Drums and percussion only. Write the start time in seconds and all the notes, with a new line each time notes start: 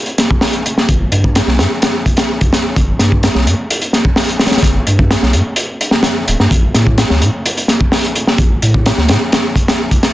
0.06 closed hi-hat
0.18 snare, closed hi-hat
0.31 kick
0.41 snare, open hi-hat
0.53 closed hi-hat
0.66 closed hi-hat
0.78 snare
0.89 kick, closed hi-hat
1.12 closed hi-hat
1.24 kick
1.35 snare, closed hi-hat
1.48 snare
1.59 snare, closed hi-hat
1.82 snare, closed hi-hat
2.06 kick, closed hi-hat
2.17 snare, closed hi-hat
2.41 kick, closed hi-hat
2.53 snare, closed hi-hat
2.76 kick, closed hi-hat
2.99 snare, closed hi-hat
3.12 kick
3.23 snare, closed hi-hat
3.35 snare
3.47 closed hi-hat
3.71 closed hi-hat
3.81 closed hi-hat
3.93 snare, closed hi-hat
4.05 kick
4.16 snare, open hi-hat
4.29 closed hi-hat
4.39 snare, closed hi-hat
4.47 snare, closed hi-hat
4.51 snare, closed hi-hat
4.57 snare, closed hi-hat
4.63 kick, closed hi-hat
4.87 closed hi-hat
4.99 kick
5.11 snare, closed hi-hat
5.23 snare
5.33 closed hi-hat
5.56 closed hi-hat
5.81 closed hi-hat
5.91 snare
6.03 snare, closed hi-hat
6.28 closed hi-hat
6.40 snare
6.51 kick, closed hi-hat
6.74 snare, closed hi-hat
6.87 kick
6.98 snare, closed hi-hat
7.10 snare
7.22 closed hi-hat
7.46 closed hi-hat
7.57 closed hi-hat
7.68 snare, closed hi-hat
7.81 kick
7.92 snare, open hi-hat
8.05 closed hi-hat
8.15 closed hi-hat
8.27 snare
8.38 kick, closed hi-hat
8.62 closed hi-hat
8.74 kick
8.86 snare, closed hi-hat
8.98 snare
9.08 snare, closed hi-hat
9.32 snare, closed hi-hat
9.56 kick, closed hi-hat
9.68 snare, closed hi-hat
9.91 kick, closed hi-hat
10.03 snare, closed hi-hat